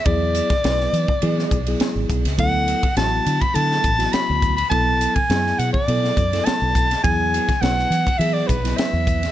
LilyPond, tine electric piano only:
\new Staff \with { instrumentName = "Tine electric piano" } { \time 4/4 \key e \mixolydian \tempo 4 = 103 <fis b e' gis'>8. r16 <fis b e' b'>8. r16 <fis b e' gis'>8 r16 <fis b e' gis'>4 r16 | <fis b e' a'>8. r16 <fis b e' fis'>8. r16 <fis b e' a'>8 r16 <fis b e' fis'>4 r16 | <fis b e' a'>8. r16 <fis b e' gis'>8. r16 <fis b e' a'>8 r16 <fis b e' a'>4 r16 | <fis b e' gis'>8. r16 <fis b e' b'>8. r16 <fis b e' gis'>8 r16 <fis b e' b'>4 r16 | }